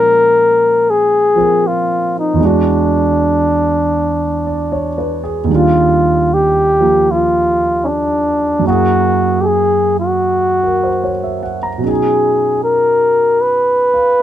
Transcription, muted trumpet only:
Already playing: A#4
0.90 G#4
1.67 F4
2.19 D#4
2.46 D4
5.53 F4
6.34 G4
7.11 F4
7.84 C#4 D4
8.67 F#4
9.41 G4 G#4
10.00 F#4
11.87 G#4
12.64 A#4
13.41 B4

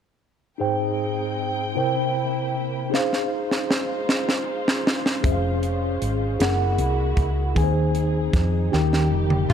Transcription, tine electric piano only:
0.58 G#2 D#4 G#4 C5 G5
1.75 C3 E4 A#4 C5 G5
2.90 D#4 G#4 C5
2.95 F5
5.23 C#4 G#4 C5 E5
5.32 F5
6.40 E4 G#4 A#4 F#5
7.55 D#3 D#4 G#4 B4 G#5
7.64 C5
8.72 D#3 D#4 G4 A#4 G5

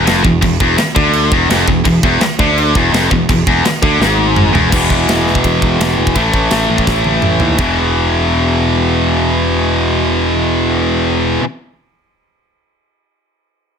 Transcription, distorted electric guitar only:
0.05 F2
0.23 E2
0.41 E2
0.60 E2
0.78 muted distorted electric guitar stroke
0.95 D3
1.32 E2
1.50 F2
1.68 E2
1.85 E2
2.04 E2
2.21 muted distorted electric guitar stroke
2.40 D3
2.75 E2
2.93 F2
3.11 E2
3.29 E2
3.47 E2
3.65 muted distorted electric guitar stroke
3.83 D3
4.00 G#2
4.53 E2
4.71 E2 B2 E3
6.15 A2 E3 A3
7.58 E2 B2 E3

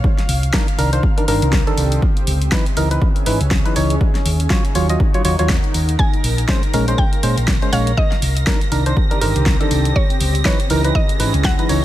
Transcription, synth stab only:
0.54 D#3 D4 A#4
0.78 D#3 D4 A#4
0.93 D#3 D4 C5
1.18 D#3 D4 A#4
1.28 D#3 D4 A#4
1.67 D#3 D4 A4
2.52 E3 D#4 B4
2.77 E3 D#4 A#4
2.91 E3 D#4 B4
3.26 E3 D#4 B4
3.65 E3 D#4 B4
3.76 E3 D#4 C#5
4.50 F#3 F4 C#5
4.75 F#3 F4 C#5
4.90 F#3 F4 D#5
5.14 F#3 F4 C#5
5.25 F#3 F4 C#5
5.39 F#3 F4 C#5
6.49 G#3 C#4 C5
6.74 G#3 C#4 A#4
6.88 G#3 C#4 C5
7.23 G#3 C#4 C5
7.62 G#3 C#4 C5
7.73 G#3 C#4 C#5
8.47 D#3 D4 A#4
8.72 D#3 D4 A#4
8.86 D#3 D4 C5
9.11 D#3 D4 A#4
9.21 D3 D#3 A#4
9.60 D#3 D4 A4
10.45 E3 D#4 B4
10.70 E3 D#4 A#4
10.84 E3 D#4 B4
11.20 E3 D#4 B4
11.59 E3 D#4 B4
11.69 E3 D#4 C#5

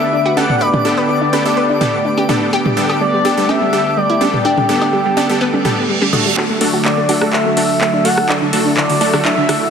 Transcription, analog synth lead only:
Already playing: E5
0.37 F#5
0.61 D5
1.09 D5
3.01 D5
3.49 E5
3.97 D5
4.45 G4
6.85 D5
7.33 E5
8.05 F#5
8.77 D5
9.25 E5

